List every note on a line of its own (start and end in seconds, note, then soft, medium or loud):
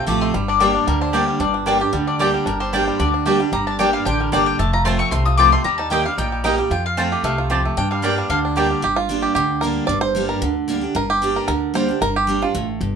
0.00 0.32 C3 loud
0.00 0.19 A3 medium
0.00 0.32 F4 medium
0.06 0.30 A1 medium
0.06 0.32 F3 medium
0.06 0.33 A3 medium
0.06 0.33 C4 medium
0.06 0.34 F4 loud
0.06 0.34 G4 medium
0.06 0.21 A5 medium
0.21 0.34 A3 medium
0.21 0.34 C6 medium
0.34 0.77 G1 medium
0.34 0.85 G2 medium
0.34 0.60 G3 medium
0.48 0.75 D4 medium
0.48 0.85 D5 medium
0.60 0.86 G3 medium
0.60 0.87 G3 medium
0.60 0.70 A#3 medium
0.60 0.86 A#3 medium
0.60 0.87 D4 loud
0.60 0.70 G4 medium
0.60 0.87 G4 medium
0.60 0.70 D5 medium
0.60 0.71 G5 loud
0.75 1.01 D4 medium
0.87 1.30 D2 medium
0.87 1.38 D3 medium
0.87 1.28 G3 medium
0.87 1.01 A#4 medium
1.01 1.40 D4 medium
1.01 1.38 C5 medium
1.13 1.39 G3 medium
1.13 1.23 A#3 medium
1.13 1.39 A#3 medium
1.13 1.40 D4 medium
1.13 1.23 G4 medium
1.13 1.81 G4 medium
1.13 1.40 G4 medium
1.13 1.23 D5 medium
1.13 1.24 G5 medium
1.28 1.93 G3 medium
1.40 1.83 G1 medium
1.40 1.91 G2 medium
1.40 1.54 D4 medium
1.40 1.54 D5 medium
1.54 1.67 D4 medium
1.66 1.80 G3 medium
1.66 1.76 A#3 medium
1.66 1.81 A#3 medium
1.66 2.07 D4 medium
1.66 1.81 D4 medium
1.66 1.76 G4 medium
1.66 1.78 G4 medium
1.66 1.77 D5 medium
1.66 1.77 G5 medium
1.80 1.94 D4 soft
1.80 1.92 G4 medium
1.80 2.20 G4 medium
1.93 2.36 D2 medium
1.93 2.44 D3 medium
1.93 2.34 G3 medium
2.07 2.46 D4 medium
2.07 2.44 D5 medium
2.19 2.45 G3 medium
2.19 2.29 A#3 medium
2.19 2.45 A#3 medium
2.19 2.46 D4 medium
2.19 2.30 G4 medium
2.19 3.26 G4 medium
2.19 2.46 G4 medium
2.19 2.30 D5 medium
2.19 2.30 G5 medium
2.34 2.59 G3 medium
2.46 2.89 G1 medium
2.46 2.97 G2 medium
2.46 2.72 D4 medium
2.46 2.60 A#4 medium
2.60 2.86 G3 medium
2.60 2.97 C5 medium
2.73 2.98 G3 medium
2.73 2.83 A#3 medium
2.73 2.99 A#3 loud
2.73 2.99 D4 medium
2.73 2.83 G4 medium
2.73 3.00 G4 medium
2.73 2.83 D5 medium
2.73 2.83 G5 loud
2.88 3.24 G3 medium
2.99 3.42 D2 medium
2.99 3.50 D3 loud
2.99 3.13 D4 medium
2.99 3.13 D5 medium
3.14 3.50 D4 medium
3.26 3.39 G3 medium
3.26 3.36 A#3 medium
3.26 3.40 A#3 medium
3.26 3.40 D4 medium
3.26 3.64 G4 medium
3.26 3.36 G4 medium
3.26 3.38 G4 medium
3.26 3.36 D5 medium
3.26 3.36 G5 medium
3.40 3.52 G3 medium
3.40 3.53 D4 soft
3.40 3.52 G4 medium
3.52 3.95 G1 medium
3.52 4.03 G2 medium
3.52 3.91 G3 medium
3.52 3.66 A#5 loud
3.67 3.78 D4 medium
3.67 3.79 A5 medium
3.79 4.04 G3 medium
3.79 3.89 A#3 medium
3.79 4.05 A#3 medium
3.79 4.05 D4 medium
3.79 3.89 G4 medium
3.79 4.06 G4 medium
3.79 3.89 D5 medium
3.79 3.93 G5 medium
3.79 3.89 G5 medium
3.93 4.19 G3 medium
3.93 4.05 F5 medium
4.05 4.29 A1 medium
4.05 4.57 D3 medium
4.05 4.32 D4 medium
4.05 4.19 G5 loud
4.20 4.45 G3 medium
4.20 4.32 A#4 medium
4.32 4.55 G1 medium
4.32 4.58 G3 medium
4.32 4.42 A#3 medium
4.32 4.58 A#3 medium
4.32 4.59 D4 medium
4.32 4.58 D4 medium
4.32 4.42 G4 medium
4.32 4.59 G4 loud
4.32 4.46 D5 medium
4.32 4.42 D5 medium
4.32 4.42 G5 medium
4.46 4.59 G3 medium
4.46 4.58 G5 medium
4.59 5.01 F1 medium
4.59 5.10 F2 medium
4.59 4.85 A3 medium
4.59 4.73 A5 medium
4.73 5.10 F4 medium
4.73 4.85 A#5 loud
4.85 5.11 F3 medium
4.85 5.11 A3 medium
4.85 4.95 C4 medium
4.85 5.12 C4 loud
4.85 4.95 F4 medium
4.85 5.12 F4 medium
4.85 4.95 C5 loud
4.85 4.95 A5 loud
4.85 4.99 C6 loud
4.99 5.36 C4 medium
4.99 5.11 C#6 loud
5.11 5.54 C2 medium
5.11 5.63 C3 medium
5.11 5.50 A3 medium
5.11 5.25 C6 medium
5.26 5.63 F4 medium
5.26 5.37 D#6 loud
5.37 5.52 F3 medium
5.37 5.52 A3 medium
5.37 5.48 C4 medium
5.37 5.53 C4 medium
5.37 5.48 F4 medium
5.37 5.51 F4 medium
5.37 5.65 G4 medium
5.37 5.48 C5 medium
5.37 5.48 A5 medium
5.37 5.52 D6 loud
5.52 5.65 A3 medium
5.52 5.65 C4 medium
5.52 5.64 F4 medium
5.52 5.64 C6 medium
5.64 6.07 D#2 medium
5.64 5.89 D#3 medium
5.64 6.03 G3 medium
5.64 5.77 A#5 medium
5.78 5.91 D#4 medium
5.78 5.90 A5 medium
5.90 6.04 D#3 medium
5.90 6.05 A#3 medium
5.90 6.01 A#3 medium
5.90 6.17 D#4 medium
5.90 6.05 D#4 medium
5.90 6.01 G4 medium
5.90 6.04 G4 loud
5.90 6.01 D#5 medium
5.90 6.05 G5 medium
5.90 6.02 G5 medium
6.05 6.31 G3 medium
6.05 6.19 D#4 soft
6.05 6.18 G4 medium
6.05 6.18 F5 medium
6.18 6.60 A#1 medium
6.18 6.69 A#2 loud
6.18 6.43 D#4 medium
6.18 6.43 G5 medium
6.32 6.57 G3 medium
6.44 6.58 D#3 medium
6.44 6.54 A#3 medium
6.44 6.58 A#3 medium
6.44 6.71 D#4 medium
6.44 6.59 D#4 medium
6.44 6.54 G4 medium
6.44 6.56 G4 medium
6.44 6.54 D#5 medium
6.44 6.54 G5 medium
6.58 6.71 G3 medium
6.58 6.72 D#4 soft
6.58 6.70 G4 medium
6.71 7.13 F2 loud
6.71 7.22 F2 medium
6.71 6.97 F4 medium
6.71 6.85 G5 medium
6.86 7.22 F5 loud
6.97 7.23 F3 medium
6.97 7.23 A3 medium
6.97 7.07 C4 medium
6.97 7.24 C4 medium
6.97 7.07 F4 medium
6.97 7.36 F4 medium
6.97 7.24 F4 medium
6.97 7.07 C5 medium
6.97 7.08 A5 medium
7.12 7.48 G4 medium
7.23 7.66 C2 medium
7.23 7.75 C3 loud
7.23 7.62 A3 medium
7.23 7.38 F5 medium
7.38 7.75 F4 medium
7.50 7.76 F2 medium
7.50 7.60 C4 medium
7.50 7.60 F4 medium
7.50 7.77 G4 medium
7.50 7.61 C5 medium
7.50 7.61 A5 medium
7.65 7.78 A3 medium
7.77 8.28 G2 loud
7.77 8.20 G2 medium
7.77 8.03 D4 medium
7.77 7.90 G5 loud
7.91 8.17 G3 medium
7.91 8.27 F5 medium
8.02 8.28 G3 medium
8.02 8.29 A#3 medium
8.02 8.13 A#3 medium
8.02 8.30 D4 medium
8.02 8.29 D4 medium
8.02 8.13 G4 medium
8.02 8.29 G4 loud
8.02 8.13 D5 loud
8.02 8.14 G5 medium
8.18 8.54 G3 medium
8.30 8.72 D2 medium
8.30 8.81 D3 loud
8.30 8.44 D4 medium
8.30 8.38 F5 loud
8.45 8.81 D4 medium
8.56 8.82 G3 medium
8.56 8.66 A#3 medium
8.56 8.82 A#3 medium
8.56 8.82 D4 medium
8.56 8.83 G4 medium
8.56 8.66 G4 medium
8.56 8.83 G4 medium
8.56 8.67 D5 medium
8.56 8.67 G5 medium
8.71 8.83 G3 medium
8.82 9.26 G1 medium
8.82 9.33 G2 medium
8.82 8.97 G4 medium
8.96 9.24 F4 medium
9.09 9.35 G3 medium
9.09 9.35 A#3 medium
9.09 9.35 D4 medium
9.09 9.36 G4 loud
9.22 9.34 G4 medium
9.35 9.78 D2 medium
9.35 9.87 D3 loud
9.35 9.63 G4 medium
9.61 9.88 G3 medium
9.61 9.88 A#3 medium
9.61 9.89 D4 medium
9.61 9.89 G4 medium
9.61 9.87 A#4 medium
9.87 10.31 G1 loud
9.87 10.40 G2 loud
9.87 10.01 D5 loud
10.01 10.27 C5 loud
10.15 10.41 G3 medium
10.15 10.41 A#3 medium
10.15 10.41 D4 medium
10.15 10.42 G4 loud
10.29 10.54 A#4 medium
10.42 10.84 D2 medium
10.42 10.93 D3 loud
10.68 10.82 G3 medium
10.68 10.82 A#3 medium
10.68 10.83 D4 medium
10.68 10.80 G4 medium
10.81 10.95 D4 medium
10.81 10.94 G4 medium
10.95 11.38 G1 medium
10.95 11.46 G2 loud
10.95 11.10 A#4 loud
11.10 11.37 G4 medium
11.22 11.47 G3 medium
11.22 11.48 A#3 medium
11.22 11.48 D4 medium
11.22 11.48 G4 loud
11.36 11.47 A#4 medium
11.48 11.91 D2 medium
11.48 11.99 D3 loud
11.48 11.75 A#4 loud
11.74 11.88 G3 medium
11.74 11.88 A#3 loud
11.74 11.89 D4 medium
11.74 11.87 G4 loud
11.74 12.01 C5 loud
11.89 12.02 D4 medium
11.89 12.01 G4 medium
12.01 12.44 G1 medium
12.01 12.52 G2 medium
12.01 12.16 A#4 loud
12.16 12.43 G4 medium
12.27 12.41 G3 medium
12.27 12.42 A#3 loud
12.27 12.42 D4 medium
12.27 12.41 G4 loud
12.42 12.55 D4 soft
12.42 12.67 F4 medium
12.42 12.54 G4 soft
12.55 12.77 A1 medium
12.55 12.80 A2 loud
12.81 12.96 G1 loud
12.81 12.96 G2 medium